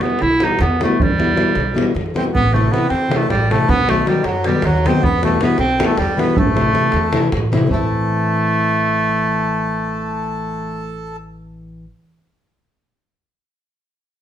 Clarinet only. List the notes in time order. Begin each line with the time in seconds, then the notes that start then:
0.02 B3
0.21 E4
0.44 D#4
0.62 B3
0.83 A3
1.02 G3
2.17 C4
2.34 B3
2.54 A3
2.71 B3
2.89 C4
3.16 A3
3.29 G3
3.51 A3
3.69 B3
3.89 A3
4.07 G3
4.24 F#3
4.46 G3
4.65 F#3
4.87 C4
5.03 B3
5.24 A3
5.43 B3
5.59 C4
5.86 A3
5.97 G3
6.19 B3
6.39 A3
7.70 A3